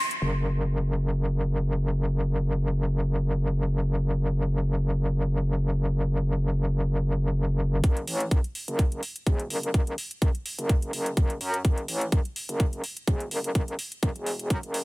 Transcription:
0.11 closed hi-hat
0.22 wobble bass F#1
7.84 wobble bass F#1, kick, closed hi-hat
7.97 closed hi-hat
8.07 wobble bass A1, open hi-hat
8.20 closed hi-hat
8.31 wobble bass F#1, kick, closed hi-hat
8.44 closed hi-hat
8.55 open hi-hat
8.68 wobble bass F#1, closed hi-hat
8.79 kick, closed hi-hat
8.92 closed hi-hat
9.03 open hi-hat
9.16 closed hi-hat
9.27 wobble bass E1, kick, closed hi-hat
9.39 closed hi-hat
9.50 wobble bass F#1, open hi-hat
9.63 closed hi-hat
9.74 kick, closed hi-hat
9.87 closed hi-hat
9.98 open hi-hat
10.11 closed hi-hat
10.22 wobble bass F#1, kick, closed hi-hat
10.35 closed hi-hat
10.46 open hi-hat
10.58 wobble bass F#1, closed hi-hat
10.69 kick, closed hi-hat
10.82 closed hi-hat
10.93 wobble bass F#1, open hi-hat
11.06 closed hi-hat
11.17 kick, closed hi-hat
11.30 closed hi-hat
11.41 wobble bass F#2, open hi-hat
11.54 closed hi-hat
11.65 wobble bass F#1, kick, closed hi-hat
11.78 closed hi-hat
11.88 wobble bass A1, open hi-hat
12.01 closed hi-hat
12.12 wobble bass F#1, kick, closed hi-hat
12.25 closed hi-hat
12.36 open hi-hat
12.49 wobble bass F#1, closed hi-hat
12.60 kick, closed hi-hat
12.73 closed hi-hat
12.84 open hi-hat
12.97 closed hi-hat
13.07 wobble bass E1, kick, closed hi-hat
13.20 closed hi-hat
13.31 wobble bass F#1, open hi-hat
13.44 closed hi-hat
13.55 kick, closed hi-hat
13.68 closed hi-hat
13.79 open hi-hat
13.92 closed hi-hat
14.03 wobble bass F#1, kick, closed hi-hat
14.16 wobble bass E1, closed hi-hat
14.26 open hi-hat
14.39 closed hi-hat
14.50 wobble bass F#2, kick, closed hi-hat
14.63 wobble bass F#1, closed hi-hat
14.74 open hi-hat

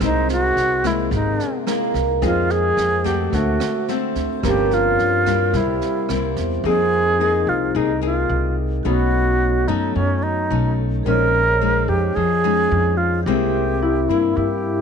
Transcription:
Already playing: harp D#4
0.00 upright bass C2, nylon-string guitar C3 G#3 A#3 E4, harp C4, vibraphone D#4 G#4 A#4 D#5, alto flute D#4, kick, cross-stick, snare
0.29 alto flute F#4, snare
0.56 upright bass C2, snare
0.84 nylon-string guitar G#3 A#3, alto flute E4, kick, cross-stick, snare
1.11 upright bass G#1, nylon-string guitar C3, alto flute D#4, kick, snare
1.40 snare
1.66 nylon-string guitar G#3 A#3 E4, harp A#3, cross-stick, snare
1.94 upright bass C2, kick, snare
2.22 upright bass F2, nylon-string guitar F3 C4 D#4 G#4, harp G#3, alto flute F4, vibraphone G#4 C5 D#5, kick, snare
2.50 alto flute G#4, snare
2.77 upright bass F2, cross-stick, snare
3.04 nylon-string guitar A3 C4 F#4, alto flute G4, kick, snare
3.30 upright bass D2, nylon-string guitar D3, vibraphone F#4 A4 C5, kick, snare
3.34 harp A3, alto flute F#4, vibraphone E5
3.60 cross-stick, snare
3.88 nylon-string guitar A3 C4 F#4, harp C4, snare
4.15 upright bass D2, kick, snare
4.40 upright bass G1, nylon-string guitar G2 F3 A#3 C#4, harp A#3, vibraphone G4 A#4, kick, cross-stick, snare
4.45 alto flute G4, vibraphone C#5 F5
4.71 alto flute F4, snare
4.99 upright bass G2, snare
5.26 nylon-string guitar G3 A#3 E4, kick, cross-stick, snare
5.51 upright bass C2, nylon-string guitar C3, harp G3, vibraphone G4 A#4, kick, snare
5.56 alto flute E4, vibraphone C5 E5
5.81 snare
6.09 upright bass C2, nylon-string guitar G3 A#3 E4, harp C4, cross-stick, snare
6.37 upright bass E2, kick, snare
6.64 upright bass F2, nylon-string guitar F3 A#3 D#4 G#4, harp C4, vibraphone G#4 A#4 D#5, alto flute G#4
7.19 nylon-string guitar A#3 D#4 G#4, harp D#4
7.47 upright bass C2, alto flute F4
7.75 upright bass C2, nylon-string guitar C3 A#3 D#4 G#4, alto flute D#4
8.01 nylon-string guitar A#3 D#4 G#4, alto flute F4
8.29 upright bass C2
8.83 upright bass B1, nylon-string guitar B2 A3 C#4 D#4, harp B3, vibraphone F#4 A4 C#5, alto flute F#4
8.89 vibraphone D#5
9.68 upright bass F#2, nylon-string guitar A3 C#4 D#4, alto flute D#4
9.95 upright bass F#2, nylon-string guitar F#3, alto flute C#4
10.23 alto flute D#4
10.50 upright bass B1, nylon-string guitar A3 C#4 D#4
11.03 upright bass A#1, nylon-string guitar A#2 G#3 C#4 D#4, vibraphone G#4 C5, alto flute A#4
11.08 harp C#4, vibraphone C#5 D#5
11.61 nylon-string guitar G#3 C#4 D#4
11.88 upright bass F2, alto flute G4
12.15 upright bass F2, nylon-string guitar F3, alto flute G#4
12.44 nylon-string guitar G#3 C#4 D#4
12.71 upright bass F2
12.97 alto flute F4
13.23 upright bass C2, harp C4, vibraphone E4 G4, alto flute G4
13.27 nylon-string guitar C3 G#3 A#3 E4, vibraphone A#4 E5
13.82 harp E4
14.09 upright bass G2, nylon-string guitar A#3 E4, alto flute E4
14.36 upright bass G2, harp E4, alto flute G4

